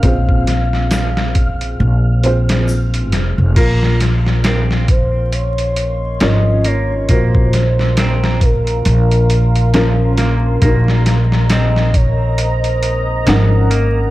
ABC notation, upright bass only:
X:1
M:4/4
L:1/16
Q:"Swing 16ths" 1/4=68
K:Bbm
V:1 name="Upright bass" clef=bass
B,,,8 B,,,6 F,,, F,,, | B,,,12 A,,,4 | B,,,8 B,,,8 | B,,,12 A,,,4 |]